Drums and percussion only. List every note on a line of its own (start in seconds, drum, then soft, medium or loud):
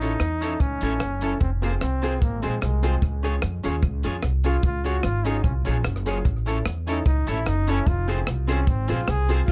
0.02 closed hi-hat medium
0.20 cross-stick loud
0.20 closed hi-hat medium
0.42 closed hi-hat medium
0.60 kick loud
0.60 closed hi-hat medium
0.81 closed hi-hat medium
1.00 cross-stick loud
1.00 closed hi-hat medium
1.21 closed hi-hat medium
1.40 kick loud
1.40 closed hi-hat medium
1.63 closed hi-hat medium
1.81 cross-stick loud
1.81 closed hi-hat medium
2.03 closed hi-hat medium
2.22 kick loud
2.22 closed hi-hat medium
2.43 closed hi-hat medium
2.62 cross-stick loud
2.62 closed hi-hat medium
2.83 closed hi-hat medium
3.02 kick loud
3.02 closed hi-hat medium
3.24 closed hi-hat medium
3.42 cross-stick loud
3.42 closed hi-hat medium
3.64 closed hi-hat medium
3.82 kick loud
3.82 closed hi-hat medium
4.03 closed hi-hat medium
4.22 cross-stick loud
4.22 closed hi-hat medium
4.44 closed hi-hat medium
4.63 kick loud
4.63 closed hi-hat medium
4.85 closed hi-hat medium
5.03 cross-stick loud
5.03 closed hi-hat medium
5.25 closed hi-hat medium
5.44 kick loud
5.44 closed hi-hat medium
5.65 closed hi-hat medium
5.84 cross-stick loud
5.84 closed hi-hat medium
5.96 cross-stick medium
6.06 closed hi-hat medium
6.25 kick loud
6.25 closed hi-hat medium
6.48 closed hi-hat medium
6.66 cross-stick loud
6.66 closed hi-hat medium
6.88 closed hi-hat loud
7.06 kick loud
7.06 closed hi-hat medium
7.27 closed hi-hat medium
7.46 cross-stick loud
7.46 closed hi-hat medium
7.67 closed hi-hat medium
7.86 kick loud
7.86 closed hi-hat medium
8.09 closed hi-hat medium
8.27 cross-stick loud
8.27 closed hi-hat medium
8.48 closed hi-hat medium
8.67 kick loud
8.67 closed hi-hat medium
8.88 closed hi-hat medium
9.07 cross-stick loud
9.07 closed hi-hat medium
9.29 closed hi-hat medium
9.48 kick loud
9.48 crash loud